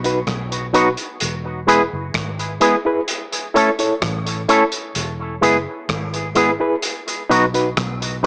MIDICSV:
0, 0, Header, 1, 5, 480
1, 0, Start_track
1, 0, Key_signature, 4, "major"
1, 0, Tempo, 937500
1, 617, Time_signature, 4, 2, 24, 8
1, 4230, End_track
2, 0, Start_track
2, 0, Title_t, "Reed electric piano"
2, 0, Program_c, 0, 4
2, 22, Note_on_c, 0, 63, 66
2, 26, Note_on_c, 0, 66, 63
2, 29, Note_on_c, 0, 71, 72
2, 94, Note_off_c, 0, 63, 0
2, 96, Note_off_c, 0, 66, 0
2, 97, Note_off_c, 0, 71, 0
2, 376, Note_on_c, 0, 63, 82
2, 379, Note_on_c, 0, 66, 76
2, 383, Note_on_c, 0, 71, 86
2, 454, Note_off_c, 0, 63, 0
2, 456, Note_off_c, 0, 66, 0
2, 458, Note_off_c, 0, 71, 0
2, 857, Note_on_c, 0, 64, 83
2, 858, Note_on_c, 0, 68, 77
2, 861, Note_on_c, 0, 71, 100
2, 935, Note_off_c, 0, 64, 0
2, 935, Note_off_c, 0, 68, 0
2, 937, Note_off_c, 0, 71, 0
2, 1335, Note_on_c, 0, 64, 80
2, 1338, Note_on_c, 0, 68, 70
2, 1341, Note_on_c, 0, 71, 83
2, 1414, Note_off_c, 0, 64, 0
2, 1415, Note_off_c, 0, 68, 0
2, 1417, Note_off_c, 0, 71, 0
2, 1459, Note_on_c, 0, 64, 70
2, 1464, Note_on_c, 0, 68, 66
2, 1466, Note_on_c, 0, 71, 72
2, 1532, Note_off_c, 0, 64, 0
2, 1535, Note_off_c, 0, 68, 0
2, 1536, Note_off_c, 0, 71, 0
2, 1813, Note_on_c, 0, 64, 86
2, 1816, Note_on_c, 0, 69, 74
2, 1820, Note_on_c, 0, 73, 92
2, 1893, Note_off_c, 0, 64, 0
2, 1895, Note_off_c, 0, 69, 0
2, 1896, Note_off_c, 0, 73, 0
2, 1940, Note_on_c, 0, 64, 68
2, 1943, Note_on_c, 0, 69, 63
2, 1945, Note_on_c, 0, 73, 78
2, 2013, Note_off_c, 0, 64, 0
2, 2014, Note_off_c, 0, 69, 0
2, 2016, Note_off_c, 0, 73, 0
2, 2296, Note_on_c, 0, 64, 85
2, 2298, Note_on_c, 0, 69, 75
2, 2301, Note_on_c, 0, 73, 90
2, 2375, Note_off_c, 0, 64, 0
2, 2376, Note_off_c, 0, 69, 0
2, 2377, Note_off_c, 0, 73, 0
2, 2776, Note_on_c, 0, 64, 90
2, 2777, Note_on_c, 0, 68, 76
2, 2782, Note_on_c, 0, 71, 93
2, 2855, Note_off_c, 0, 64, 0
2, 2855, Note_off_c, 0, 68, 0
2, 2858, Note_off_c, 0, 71, 0
2, 3256, Note_on_c, 0, 64, 79
2, 3259, Note_on_c, 0, 68, 73
2, 3262, Note_on_c, 0, 71, 86
2, 3335, Note_off_c, 0, 64, 0
2, 3337, Note_off_c, 0, 68, 0
2, 3338, Note_off_c, 0, 71, 0
2, 3378, Note_on_c, 0, 64, 69
2, 3381, Note_on_c, 0, 68, 67
2, 3384, Note_on_c, 0, 71, 75
2, 3452, Note_off_c, 0, 64, 0
2, 3454, Note_off_c, 0, 68, 0
2, 3455, Note_off_c, 0, 71, 0
2, 3735, Note_on_c, 0, 63, 84
2, 3739, Note_on_c, 0, 66, 73
2, 3741, Note_on_c, 0, 71, 92
2, 3815, Note_off_c, 0, 63, 0
2, 3816, Note_off_c, 0, 66, 0
2, 3818, Note_off_c, 0, 71, 0
2, 3860, Note_on_c, 0, 63, 68
2, 3863, Note_on_c, 0, 66, 65
2, 3865, Note_on_c, 0, 71, 74
2, 3934, Note_off_c, 0, 63, 0
2, 3935, Note_off_c, 0, 66, 0
2, 3936, Note_off_c, 0, 71, 0
2, 4214, Note_on_c, 0, 63, 80
2, 4230, Note_off_c, 0, 63, 0
2, 4230, End_track
3, 0, Start_track
3, 0, Title_t, "Clean electric guitar"
3, 0, Program_c, 1, 27
3, 373, Note_on_c, 1, 54, 75
3, 378, Note_on_c, 1, 59, 71
3, 381, Note_on_c, 1, 63, 80
3, 386, Note_on_c, 1, 66, 91
3, 444, Note_off_c, 1, 54, 0
3, 446, Note_off_c, 1, 59, 0
3, 447, Note_off_c, 1, 63, 0
3, 450, Note_off_c, 1, 66, 0
3, 854, Note_on_c, 1, 56, 69
3, 859, Note_on_c, 1, 59, 70
3, 860, Note_on_c, 1, 64, 78
3, 864, Note_on_c, 1, 68, 78
3, 924, Note_off_c, 1, 56, 0
3, 926, Note_off_c, 1, 59, 0
3, 927, Note_off_c, 1, 64, 0
3, 929, Note_off_c, 1, 68, 0
3, 1333, Note_on_c, 1, 56, 71
3, 1336, Note_on_c, 1, 59, 78
3, 1340, Note_on_c, 1, 64, 74
3, 1341, Note_on_c, 1, 68, 75
3, 1403, Note_off_c, 1, 56, 0
3, 1405, Note_off_c, 1, 59, 0
3, 1407, Note_off_c, 1, 64, 0
3, 1408, Note_off_c, 1, 68, 0
3, 1820, Note_on_c, 1, 57, 80
3, 1822, Note_on_c, 1, 61, 74
3, 1826, Note_on_c, 1, 64, 80
3, 1827, Note_on_c, 1, 69, 83
3, 1887, Note_off_c, 1, 57, 0
3, 1888, Note_off_c, 1, 61, 0
3, 1890, Note_off_c, 1, 64, 0
3, 1891, Note_off_c, 1, 69, 0
3, 2296, Note_on_c, 1, 57, 72
3, 2298, Note_on_c, 1, 61, 81
3, 2303, Note_on_c, 1, 64, 90
3, 2305, Note_on_c, 1, 69, 90
3, 2365, Note_off_c, 1, 57, 0
3, 2366, Note_off_c, 1, 61, 0
3, 2369, Note_off_c, 1, 64, 0
3, 2370, Note_off_c, 1, 69, 0
3, 2772, Note_on_c, 1, 56, 83
3, 2778, Note_on_c, 1, 59, 86
3, 2778, Note_on_c, 1, 64, 82
3, 2782, Note_on_c, 1, 68, 91
3, 2843, Note_off_c, 1, 56, 0
3, 2846, Note_off_c, 1, 59, 0
3, 2846, Note_off_c, 1, 64, 0
3, 2848, Note_off_c, 1, 68, 0
3, 3251, Note_on_c, 1, 56, 75
3, 3256, Note_on_c, 1, 59, 81
3, 3259, Note_on_c, 1, 64, 84
3, 3260, Note_on_c, 1, 68, 82
3, 3323, Note_off_c, 1, 56, 0
3, 3326, Note_off_c, 1, 59, 0
3, 3327, Note_off_c, 1, 64, 0
3, 3328, Note_off_c, 1, 68, 0
3, 3736, Note_on_c, 1, 54, 78
3, 3738, Note_on_c, 1, 59, 88
3, 3744, Note_on_c, 1, 63, 97
3, 3745, Note_on_c, 1, 66, 94
3, 3806, Note_off_c, 1, 54, 0
3, 3807, Note_off_c, 1, 59, 0
3, 3810, Note_off_c, 1, 63, 0
3, 3810, Note_off_c, 1, 66, 0
3, 4212, Note_on_c, 1, 54, 72
3, 4230, Note_off_c, 1, 54, 0
3, 4230, End_track
4, 0, Start_track
4, 0, Title_t, "Fingered electric bass"
4, 0, Program_c, 2, 33
4, 0, Note_on_c, 2, 35, 81
4, 120, Note_off_c, 2, 35, 0
4, 142, Note_on_c, 2, 35, 86
4, 484, Note_off_c, 2, 35, 0
4, 626, Note_on_c, 2, 28, 87
4, 965, Note_off_c, 2, 28, 0
4, 989, Note_on_c, 2, 30, 75
4, 1091, Note_off_c, 2, 30, 0
4, 1100, Note_on_c, 2, 32, 83
4, 1319, Note_off_c, 2, 32, 0
4, 2060, Note_on_c, 2, 33, 93
4, 2279, Note_off_c, 2, 33, 0
4, 2539, Note_on_c, 2, 28, 85
4, 2759, Note_off_c, 2, 28, 0
4, 2779, Note_on_c, 2, 30, 81
4, 2893, Note_off_c, 2, 30, 0
4, 3018, Note_on_c, 2, 32, 87
4, 3363, Note_off_c, 2, 32, 0
4, 3741, Note_on_c, 2, 35, 84
4, 3961, Note_off_c, 2, 35, 0
4, 3982, Note_on_c, 2, 35, 86
4, 4230, Note_off_c, 2, 35, 0
4, 4230, End_track
5, 0, Start_track
5, 0, Title_t, "Drums"
5, 22, Note_on_c, 9, 42, 47
5, 73, Note_off_c, 9, 42, 0
5, 138, Note_on_c, 9, 36, 103
5, 140, Note_on_c, 9, 37, 100
5, 140, Note_on_c, 9, 42, 75
5, 190, Note_off_c, 9, 36, 0
5, 191, Note_off_c, 9, 37, 0
5, 191, Note_off_c, 9, 42, 0
5, 266, Note_on_c, 9, 42, 53
5, 317, Note_off_c, 9, 42, 0
5, 381, Note_on_c, 9, 42, 70
5, 432, Note_off_c, 9, 42, 0
5, 498, Note_on_c, 9, 42, 48
5, 549, Note_off_c, 9, 42, 0
5, 616, Note_on_c, 9, 42, 87
5, 667, Note_off_c, 9, 42, 0
5, 863, Note_on_c, 9, 42, 71
5, 914, Note_off_c, 9, 42, 0
5, 1097, Note_on_c, 9, 36, 101
5, 1097, Note_on_c, 9, 42, 82
5, 1100, Note_on_c, 9, 37, 95
5, 1148, Note_off_c, 9, 36, 0
5, 1148, Note_off_c, 9, 42, 0
5, 1151, Note_off_c, 9, 37, 0
5, 1225, Note_on_c, 9, 42, 44
5, 1277, Note_off_c, 9, 42, 0
5, 1336, Note_on_c, 9, 42, 77
5, 1387, Note_off_c, 9, 42, 0
5, 1576, Note_on_c, 9, 42, 88
5, 1627, Note_off_c, 9, 42, 0
5, 1702, Note_on_c, 9, 42, 56
5, 1754, Note_off_c, 9, 42, 0
5, 1822, Note_on_c, 9, 42, 58
5, 1874, Note_off_c, 9, 42, 0
5, 1939, Note_on_c, 9, 42, 47
5, 1990, Note_off_c, 9, 42, 0
5, 2058, Note_on_c, 9, 36, 97
5, 2058, Note_on_c, 9, 37, 109
5, 2058, Note_on_c, 9, 42, 75
5, 2109, Note_off_c, 9, 36, 0
5, 2109, Note_off_c, 9, 42, 0
5, 2110, Note_off_c, 9, 37, 0
5, 2183, Note_on_c, 9, 42, 55
5, 2235, Note_off_c, 9, 42, 0
5, 2298, Note_on_c, 9, 42, 70
5, 2350, Note_off_c, 9, 42, 0
5, 2416, Note_on_c, 9, 42, 49
5, 2467, Note_off_c, 9, 42, 0
5, 2535, Note_on_c, 9, 42, 82
5, 2586, Note_off_c, 9, 42, 0
5, 2780, Note_on_c, 9, 42, 78
5, 2832, Note_off_c, 9, 42, 0
5, 3015, Note_on_c, 9, 36, 94
5, 3015, Note_on_c, 9, 42, 85
5, 3018, Note_on_c, 9, 37, 104
5, 3067, Note_off_c, 9, 36, 0
5, 3067, Note_off_c, 9, 42, 0
5, 3070, Note_off_c, 9, 37, 0
5, 3141, Note_on_c, 9, 42, 43
5, 3193, Note_off_c, 9, 42, 0
5, 3253, Note_on_c, 9, 42, 74
5, 3304, Note_off_c, 9, 42, 0
5, 3494, Note_on_c, 9, 42, 89
5, 3545, Note_off_c, 9, 42, 0
5, 3623, Note_on_c, 9, 42, 56
5, 3675, Note_off_c, 9, 42, 0
5, 3743, Note_on_c, 9, 42, 67
5, 3794, Note_off_c, 9, 42, 0
5, 3862, Note_on_c, 9, 42, 45
5, 3913, Note_off_c, 9, 42, 0
5, 3979, Note_on_c, 9, 36, 104
5, 3979, Note_on_c, 9, 37, 108
5, 3979, Note_on_c, 9, 42, 74
5, 4030, Note_off_c, 9, 36, 0
5, 4030, Note_off_c, 9, 42, 0
5, 4031, Note_off_c, 9, 37, 0
5, 4107, Note_on_c, 9, 42, 56
5, 4158, Note_off_c, 9, 42, 0
5, 4230, End_track
0, 0, End_of_file